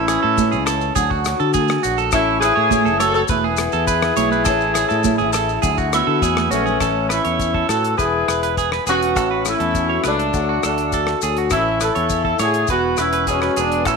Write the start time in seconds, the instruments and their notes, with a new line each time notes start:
Already playing: fingered electric bass A1, alto saxophone C#4, horn section E4
0.08 steel-string acoustic guitar E3, clean electric guitar G#4, cross-stick, closed hi-hat, muted conga, maracas
0.23 fingered electric bass A2, clean electric guitar A4
0.38 steel-string acoustic guitar C#4, kick, high conga, maracas
0.52 fingered electric bass C#2, clean electric guitar G#4, maracas
0.66 steel-string acoustic guitar C#4, clean electric guitar A4, cross-stick, closed hi-hat, maracas
0.81 maracas
0.96 fingered electric bass D2, steel-string acoustic guitar D3, clean electric guitar G#4, kick, muted conga, low conga, maracas
1.10 clean electric guitar F#4, kick
1.25 steel-string acoustic guitar F#3, cross-stick, closed hi-hat, maracas
1.40 fingered electric bass D3, clean electric guitar A4, maracas
1.54 steel-string acoustic guitar A3, clean electric guitar G#4, kick, high conga, maracas
1.68 cross-stick, maracas
1.83 fingered electric bass A#1, steel-string acoustic guitar D4, clean electric guitar F#4, closed hi-hat, muted conga, maracas
1.98 clean electric guitar A4, maracas
2.12 fingered electric bass A1, steel-string acoustic guitar A2, alto saxophone C#4, horn section E4, clean electric guitar A4, kick, cross-stick, muted conga, maracas
2.39 steel-string acoustic guitar E3, horn section G#4, clean electric guitar B4, cross-stick, closed hi-hat, muted conga, maracas
2.44 alto saxophone E4
2.56 fingered electric bass A2, clean electric guitar C#5
2.71 steel-string acoustic guitar C#4, kick, high conga, maracas
2.85 fingered electric bass F#1, clean electric guitar A4, maracas
2.98 steel-string acoustic guitar E4, alto saxophone F#4, horn section A4, clean electric guitar C#5, cross-stick, closed hi-hat, maracas
3.14 alto saxophone F#4, horn section A4, maracas
3.28 fingered electric bass E1, steel-string acoustic guitar E3, alto saxophone E4, horn section G#4, clean electric guitar B4, kick, muted conga, high conga, maracas
3.44 clean electric guitar G#4
3.57 steel-string acoustic guitar B3, cross-stick, closed hi-hat, maracas
3.72 fingered electric bass E2, clean electric guitar A4, maracas
3.87 steel-string acoustic guitar E4, clean electric guitar B4, kick, maracas
4.02 cross-stick, maracas
4.16 fingered electric bass B1, steel-string acoustic guitar E4, clean electric guitar C#5, closed hi-hat, muted conga, high conga, maracas
4.32 clean electric guitar B4, maracas
4.45 fingered electric bass A1, steel-string acoustic guitar A2 E3 C#4, clean electric guitar A4, kick, cross-stick, muted conga, maracas
4.49 steel-string acoustic guitar E4
4.61 maracas
4.74 steel-string acoustic guitar E3, clean electric guitar G#4, cross-stick, closed hi-hat, muted conga, maracas
4.89 fingered electric bass A2, clean electric guitar A4, maracas
5.04 steel-string acoustic guitar C#4, kick, high conga, low conga, maracas
5.18 fingered electric bass A1, clean electric guitar G#4, maracas
5.33 clean electric guitar A4, muted steel-string acoustic guitar stroke, cross-stick, closed hi-hat, maracas
5.49 maracas
5.62 fingered electric bass D2, steel-string acoustic guitar D3, clean electric guitar G#4, kick, muted conga, low conga, maracas
5.78 clean electric guitar F#4, kick, maracas
5.93 steel-string acoustic guitar F#3, alto saxophone B3, horn section E4, cross-stick, closed hi-hat, maracas
6.07 fingered electric bass D3, clean electric guitar A4
6.22 fingered electric bass E2, steel-string acoustic guitar E3, clean electric guitar G#4, kick, high conga, maracas
6.37 cross-stick, high conga, maracas
6.50 fingered electric bass A#1, alto saxophone A3, steel-string acoustic guitar B3, horn section C#4, clean electric guitar F#4, closed hi-hat, low conga, maracas
6.66 clean electric guitar G#4, low conga, maracas
6.80 fingered electric bass A1, steel-string acoustic guitar A2 E3 C#4 E4 A4, clean electric guitar A4, kick, cross-stick, closed hi-hat, maracas
7.09 alto saxophone C#4, horn section E4, clean electric guitar B4, muted steel-string acoustic guitar stroke, cross-stick, closed hi-hat, maracas
7.25 fingered electric bass E2, clean electric guitar C#5, closed hi-hat, maracas
7.39 steel-string acoustic guitar C#4, kick, closed hi-hat, maracas
7.54 clean electric guitar A4, kick
7.67 fingered electric bass A2, steel-string acoustic guitar E3, alto saxophone F#4, horn section A4, clean electric guitar A4, cross-stick, closed hi-hat, maracas
7.84 closed hi-hat
7.97 fingered electric bass E1, steel-string acoustic guitar E3 B3 E4, alto saxophone E4, horn section G#4, clean electric guitar B4, kick, closed hi-hat, maracas
8.28 fingered electric bass E1, steel-string acoustic guitar E4, clean electric guitar B4, cross-stick, closed hi-hat, maracas
8.43 clean electric guitar B4, closed hi-hat, maracas
8.57 steel-string acoustic guitar E4, clean electric guitar G#4, kick, closed hi-hat, maracas
8.72 clean electric guitar B4, cross-stick
8.86 fingered electric bass E1, steel-string acoustic guitar B3, alto saxophone C#4, horn section F#4, clean electric guitar G#4, closed hi-hat, maracas
9.02 closed hi-hat
9.15 fingered electric bass A1, steel-string acoustic guitar A2, clean electric guitar A4, kick, cross-stick, closed hi-hat, maracas
9.31 clean electric guitar B4
9.45 steel-string acoustic guitar A3, alto saxophone C#4, horn section E4, cross-stick, closed hi-hat, maracas
9.60 fingered electric bass E2, clean electric guitar A4, closed hi-hat, maracas
9.74 steel-string acoustic guitar B2, kick, closed hi-hat, maracas
9.89 clean electric guitar C#5
10.04 fingered electric bass C#2, steel-string acoustic guitar C#3, alto saxophone A3, horn section D4, clean electric guitar B4, cross-stick, closed hi-hat, maracas
10.19 clean electric guitar A4, closed hi-hat
10.33 fingered electric bass D2, steel-string acoustic guitar D3 F#3 A3 D4 F#4, kick, closed hi-hat, maracas
10.49 clean electric guitar F#4
10.63 fingered electric bass D2, alto saxophone A3, steel-string acoustic guitar D4, horn section D4, clean electric guitar A4, cross-stick, closed hi-hat, maracas
10.78 closed hi-hat, maracas
10.92 steel-string acoustic guitar A3, clean electric guitar A4, kick, closed hi-hat, maracas
11.07 cross-stick
11.22 fingered electric bass D2, steel-string acoustic guitar F#3, clean electric guitar G#4, closed hi-hat, maracas
11.37 clean electric guitar F#4, closed hi-hat
11.50 fingered electric bass A1, steel-string acoustic guitar A2 E3, alto saxophone C#4, horn section E4, clean electric guitar A4, muted steel-string acoustic guitar stroke, kick, cross-stick, closed hi-hat, maracas
11.80 alto saxophone E4, steel-string acoustic guitar E4, horn section A4, clean electric guitar B4, cross-stick, closed hi-hat, maracas
11.95 fingered electric bass E2, clean electric guitar C#5, closed hi-hat, maracas
12.09 steel-string acoustic guitar C#3, kick, closed hi-hat, maracas
12.25 clean electric guitar A4, kick
12.39 fingered electric bass A2, steel-string acoustic guitar D3, alto saxophone E4, horn section G#4, clean electric guitar C#5, cross-stick, closed hi-hat, maracas
12.54 closed hi-hat
12.67 fingered electric bass E1, steel-string acoustic guitar E3, alto saxophone B3, horn section F#4, clean electric guitar B4, kick, closed hi-hat, maracas
12.97 fingered electric bass E1, steel-string acoustic guitar B3, alto saxophone C#4, horn section E4, clean electric guitar B4, cross-stick, closed hi-hat, maracas
13.13 clean electric guitar B4, closed hi-hat, maracas
13.27 steel-string acoustic guitar F#3, alto saxophone G#3, horn section C#4, clean electric guitar G#4, kick, closed hi-hat, maracas
13.42 clean electric guitar B4, cross-stick
13.56 fingered electric bass E1, steel-string acoustic guitar G#3, alto saxophone B3, horn section D4, clean electric guitar G#4, closed hi-hat, maracas
13.72 closed hi-hat
13.85 fingered electric bass A1, steel-string acoustic guitar A2, alto saxophone C#4, horn section E4, clean electric guitar A4, kick, cross-stick, closed hi-hat, maracas